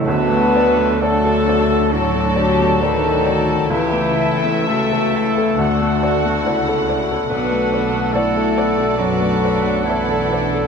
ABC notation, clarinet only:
X:1
M:4/4
L:1/8
Q:1/4=68
K:D
V:1 name="Clarinet"
B2 A2 F2 _E2 | E2 A4- A z | B2 A2 F2 E2 |]